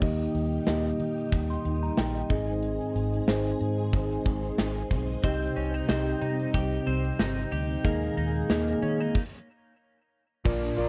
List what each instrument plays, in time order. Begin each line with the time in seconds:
0.01 fingered electric bass D#2, string machine A#2 D#3 G3 D#4 G4, tine electric piano D#3 A#3 D#4 G4 D#5, kick, crash
0.20 closed hi-hat
0.35 fingered electric bass D#2, closed hi-hat
0.53 closed hi-hat
0.66 fingered electric bass D#2, tine electric piano A#3 D#4 G4 D#5, snare
0.85 closed hi-hat
1.00 fingered electric bass D#3, closed hi-hat
1.18 closed hi-hat
1.32 fingered electric bass D#2, kick, closed hi-hat
1.50 tine electric piano C6, closed hi-hat
1.65 fingered electric bass D#2, closed hi-hat
1.83 tine electric piano A#5, closed hi-hat
1.97 fingered electric bass A#1, tine electric piano G5, snare
2.15 tine electric piano D#5, closed hi-hat
2.30 fingered electric bass G#1, tine electric piano G#2 C4 D#4 G#4 D#5, string machine G#3 C4 G#4, kick, open hi-hat
2.48 closed hi-hat
2.63 closed hi-hat
2.81 closed hi-hat
2.95 fingered electric bass G#1, closed hi-hat
3.14 closed hi-hat
3.28 fingered electric bass G#1, tine electric piano C4 D#4 G#4 C5, snare
3.46 closed hi-hat
3.61 fingered electric bass G#2, closed hi-hat
3.79 closed hi-hat
3.93 fingered electric bass G#1, kick, closed hi-hat
4.11 closed hi-hat
4.26 fingered electric bass G#1, kick, closed hi-hat
4.44 closed hi-hat
4.58 fingered electric bass G#1, snare
4.76 closed hi-hat
4.91 fingered electric bass B1, kick, open hi-hat
5.09 closed hi-hat
5.23 fingered electric bass C2, tine electric piano C3 C4 D#4 G4 D#5, string machine C3 G3 G4, clean electric guitar C4, kick, closed hi-hat
5.42 closed hi-hat
5.56 fingered electric bass C2, clean electric guitar C#4, closed hi-hat
5.74 clean electric guitar D#4, closed hi-hat
5.88 fingered electric bass C2, tine electric piano C4 D#4 G4 D#5, clean electric guitar C4, snare
6.07 closed hi-hat
6.22 fingered electric bass C3, clean electric guitar D#4, closed hi-hat
6.40 closed hi-hat
6.54 fingered electric bass C2, clean electric guitar G4, kick, closed hi-hat
6.72 closed hi-hat
6.87 fingered electric bass C2, clean electric guitar C4, closed hi-hat
7.05 closed hi-hat
7.19 fingered electric bass G1, clean electric guitar D#4, snare
7.38 closed hi-hat
7.52 fingered electric bass D2, clean electric guitar G4, open hi-hat
7.70 closed hi-hat
7.84 fingered electric bass D#2, string machine A#2 G#3 G#4, tine electric piano D#3 A#3 D#4 G#4 D#5, clean electric guitar A#3, kick, closed hi-hat
8.03 closed hi-hat
8.17 fingered electric bass D#2, clean electric guitar D#4, closed hi-hat
8.36 closed hi-hat
8.49 fingered electric bass D#2, tine electric piano A#3 D#4 G#4 D#5, clean electric guitar A#3, snare, tambourine
8.68 closed hi-hat
8.82 fingered electric bass D#3, clean electric guitar C#4, closed hi-hat
9.00 clean electric guitar D#4, closed hi-hat
9.15 kick, crash
10.45 fingered electric bass A#1, overdriven electric guitar A#2 F3 A#3, tine electric piano A#2 F4 A#4 D5, string machine A#2 D3 F3 D4 F4, kick, crash
10.64 closed hi-hat
10.77 fingered electric bass A#1, overdriven electric guitar F3 A#3, tine electric piano F4 A#4 D5, closed hi-hat